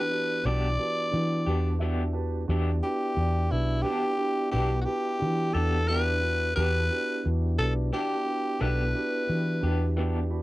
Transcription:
Already playing: E3 B3 D4 G4 B4
0.10 D4 F#4 G4 D5
0.43 B1 E3 B3 D4 F#4 G4 B4 D5
0.48 G4
0.78 D4 F#4 G4 B4
1.11 E3 D4 F#4 G4 B4
1.45 E2 D4 F#4 G4 B4
1.49 B3
1.79 E3 B3 D4 F#4 G4 D5 E5
1.83 D4 G4
2.13 D4 F#4 G4 B4 A5
2.48 E2 E3 B3 D4 E4 F#4 G4 D5
2.82 D4 F#4 G4 B4
3.16 E2 D4 F#4 G4 D5
3.50 B1 D4 E4 F#4 G4 B4
3.82 E3 B3 D4 F#4 G4 B4
3.87 D4 G4
4.17 D4 F#4 G4 B4
4.51 B1 E3 B3 D4 F#4 G4 B4
4.82 D4 F#4 G4
4.86 B4
5.18 E3 D4 F#4 G4 B4
5.53 E2 D4 F#4 G4 A4 B4
5.57 B3
5.86 E3 B3 D4 F#4 G4 B4 D5
5.91 G4
6.20 D4 F#4 G4 B4
6.55 E2 E3 B3 D4 E4 F#4 G4 B4
6.90 D4 F#4 G4 B4
7.25 E2 D4 F#4 G4 B4
7.58 B1 D4 F#4 G4 A4 B4
7.92 E3 B3 D4 F#4 G4 B4
8.25 D4 F#4 G4 B4
8.60 B1 E3 B3 D4 F#4 G4 A4 B4
8.95 D4 F#4 G4 B4
9.29 E3 D4 F#4 G4 B4
9.61 E2 D4 F#4 G4 B4
9.66 B3
9.96 E3 B3 D4 F#4 G4 B4 G5
10.00 G4
10.30 D4 F#4 G4 B4 B5

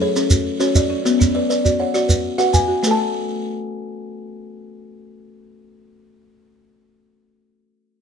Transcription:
Already playing: C#4 F#4 A4
0.01 G#4 C#5
0.16 C#4 A4, shekere
0.30 F#4, shekere
0.60 C#4 F#4 C#5, shekere
0.75 F#4 D5, shekere
0.90 C#4
1.05 B3 F#4, shekere
1.20 B3, shekere
1.34 B4 D5
1.49 B4 D5, shekere
1.65 F#4 D5, shekere
1.79 C#5 F#5
1.94 F#4 D5, shekere
2.08 B4, shekere
2.38 F#4 B4 F#5, shekere
2.53 B4 G#5, shekere
2.68 F#4
2.83 A3 A4 B4, shekere
2.87 A4 A5
2.91 A5

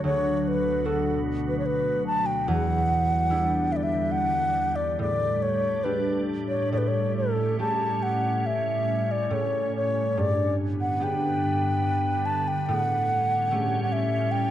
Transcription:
Already playing: D2 F#3 A3 D4 F#4
0.04 D2 B2 C#5
0.37 C#5
0.48 B4
0.84 B3 D4 F#4 A4
1.48 B4
1.59 C#5
1.66 B4
2.07 A5
2.26 G5
2.47 E2 D3 G3 F#5
3.29 G3 D4 E4
3.72 E5
3.76 D5
3.83 E5
4.12 F#5
4.76 D5
4.98 A2 D4 D5
5.42 C#5
5.84 A3 D4 G4 B4
6.48 C#5
6.72 A2 C#4 C#5
6.78 B4
6.88 C#5
7.17 A4
7.58 A3 C#4 G4 A5
8.03 F#5
8.46 E5
9.11 D5
9.30 A2 C#5
9.76 C#5
10.17 G2 D3 B3 D5
10.81 F#5
11.00 B3 D4 G4 G5
12.26 A5
12.48 G5
12.66 A2 G3 F#5
12.70 A2 C#4
13.51 A3 C#4 G4
13.83 F#5
13.93 E5
14.31 G5

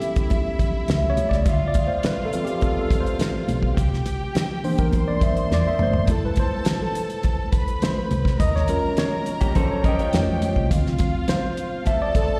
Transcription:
Already playing: G3 B3 C#4 E4 G4 A4 E5
0.02 closed hi-hat
0.16 kick, closed hi-hat
0.30 kick, closed hi-hat, muted conga, low conga
0.59 kick, closed hi-hat, muted conga, low conga
0.88 C#2 E5, snare, closed hi-hat, high conga
1.10 C#5
1.17 closed hi-hat, high conga
1.29 C#2 D5, kick, snare
1.46 D2 F4 E5 F5, kick, closed hi-hat, muted conga
1.68 D5
1.74 kick, closed hi-hat, muted conga
1.87 C5
2.03 B4, snare, closed hi-hat, high conga
2.25 A4
2.33 F3 C4 F4, closed hi-hat
2.45 G4, closed hi-hat
2.61 A4, kick, closed hi-hat, muted conga
2.81 A4
2.90 kick, closed hi-hat, muted conga
3.00 C5
3.06 closed hi-hat
3.19 snare, closed hi-hat, high conga
3.48 B1, closed hi-hat, high conga
3.63 kick
3.76 C2 G4 G5, kick, closed hi-hat, muted conga
3.93 snare
4.06 closed hi-hat, muted conga
4.35 snare, closed hi-hat, high conga
4.64 E3 A#3 D4 C5, open hi-hat
4.78 A#4, kick, closed hi-hat
4.92 C5 C6, kick, closed hi-hat, muted conga, low conga
5.08 D5
5.21 E5, kick, closed hi-hat, low conga
5.37 closed hi-hat
5.51 E2 D5, snare, high conga
5.68 E5
5.79 G1 C5, mid tom, high conga
5.93 floor tom
6.07 F1 G3 A3 E4 A4 A5, kick, closed hi-hat, muted conga
6.11 A4
6.25 B4
6.36 C5, kick, closed hi-hat, muted conga
6.65 snare, closed hi-hat, high conga
6.82 A4
6.95 closed hi-hat
7.10 closed hi-hat
7.23 kick, closed hi-hat, muted conga
7.52 B4 B5, kick, closed hi-hat, muted conga
7.68 closed hi-hat
7.82 C5, snare, closed hi-hat, high conga
8.11 C2, closed hi-hat, high conga
8.25 kick, snare
8.40 D#2 A#4 D#5 A#5, kick, closed hi-hat, muted conga
8.56 C#5, snare
8.68 G3 C#4 F4 A#4, closed hi-hat, muted conga
8.97 C#5, snare, closed hi-hat, high conga
9.26 closed hi-hat
9.41 A#3 G4, kick, closed hi-hat
9.55 C#4 A4 C5, kick, closed hi-hat, muted conga, low conga
9.71 C#5
9.84 C#4 G4 A#4 D#5 G5, kick, closed hi-hat, low conga
9.99 F4 C#5, closed hi-hat
10.13 F2, snare, closed hi-hat, high conga
10.42 closed hi-hat, high conga
10.56 C2, kick
10.69 D2 F3 C4 F4 F5, kick, closed hi-hat, muted conga
10.86 snare
10.99 kick, closed hi-hat, muted conga
11.28 C5, snare, closed hi-hat, high conga
11.57 closed hi-hat
11.86 A4 E5 A5, kick, closed hi-hat, muted conga
12.02 D5
12.14 A4, kick, closed hi-hat, muted conga

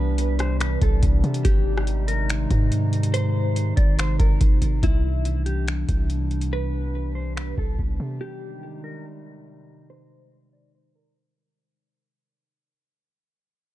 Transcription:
Already playing: C2 C3 E3 G3 B3 D4 B4
0.18 closed hi-hat
0.39 C5, cross-stick, closed hi-hat
0.60 B4, finger snap, closed hi-hat
0.82 C2 A4, kick, closed hi-hat
1.03 C2, kick, closed hi-hat
1.24 C3, closed hi-hat
1.34 closed hi-hat
1.45 G#1 C3 D#3 G#3 D#4 G4, kick, closed hi-hat
1.78 cross-stick
1.87 closed hi-hat
2.08 A#4, closed hi-hat
2.30 finger snap, closed hi-hat
2.51 G#2, kick, closed hi-hat
2.72 closed hi-hat
2.93 closed hi-hat
3.03 closed hi-hat
3.14 C5, closed hi-hat
3.56 closed hi-hat
3.77 G#1 D5, kick, closed hi-hat
3.99 C5, finger snap, closed hi-hat
4.19 G#1 A#4, kick, closed hi-hat
4.41 G#1, kick, closed hi-hat
4.62 G#1, closed hi-hat
4.83 C2 C3 E3 G3 B3 D4 E4, kick, closed hi-hat
5.25 closed hi-hat
5.46 G4, closed hi-hat
5.68 finger snap, closed hi-hat
5.89 C2, kick, closed hi-hat
6.10 closed hi-hat
6.31 closed hi-hat
6.41 closed hi-hat
6.53 B4
7.15 C5
7.37 B4, finger snap
7.58 C2 A4, kick
7.79 C2, kick
8.00 C3
8.21 C3 D#3 G3 G#3 D#4 G4
8.84 A#4
9.90 C5
10.53 D5
10.75 C5
10.95 A#4

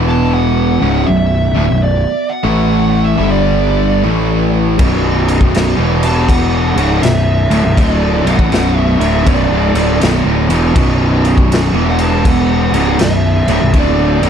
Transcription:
Already playing: E1 E2 B2 E3 B3 F#4
0.09 A5
0.34 F#5
0.80 C#1 C#2 G#2 C#3 D5
1.07 B0 B1 F#2 E5
1.54 D1 D2 A2
1.69 B0 B1 F#2
1.83 D5
2.29 F#5
2.43 A1 A2 E3 A3 E4 B4
3.05 E5
3.16 G1 G2 D3 G3 D4 A4
3.31 D5
4.05 A1 A2 E3 A3 E4 B4
4.78 B0 B1 F#2 B2 B3, kick, crash
5.28 crash
5.41 kick
5.55 snare, crash
5.77 E1 E2 B2 E3
6.03 A5, crash
6.29 F#5, kick, crash
6.75 C#1 C#2 G#2 C#3 F#4, crash
7.02 B0 B1 F#2 E5, snare, crash
7.50 D1 D2 A2, crash
7.63 B0 B1 F#2
7.77 D1 D2 A2 D3 D#5, kick, crash
7.97 D5
8.24 B0 B1 F#2 F#5, crash
8.37 A1 A2 E3, kick
8.50 B0 B1 F#2 B2, snare, crash
8.78 E5
8.99 D1 D2 A2 D3 E5, crash
9.24 B0 B1 F#2 D5, kick, crash
9.49 C#1 C#2 G#2
9.74 D1 D2 A2 D3 E4, crash
10.00 B0 B1 F#2, snare, crash
10.25 D1 D2 A2
10.48 E1 E2 B2 E3, crash
10.75 B0 B1 F#2 B2, kick, crash
11.25 crash
11.38 kick
11.52 snare, crash
11.73 E1 E2 B2 E3 F#4
11.90 F#5
11.99 A5, crash
12.25 F#5, kick, crash
12.72 C#1 C#2 G#2 C#3 D5, crash
12.99 B0 B1 F#2, snare, crash
13.04 E5
13.47 D1 D2 A2, crash
13.61 B0 B1 F#2
13.73 D1 D2 A2 D3, kick, crash
13.78 D5
14.22 B0 B1 F#2 B4, crash

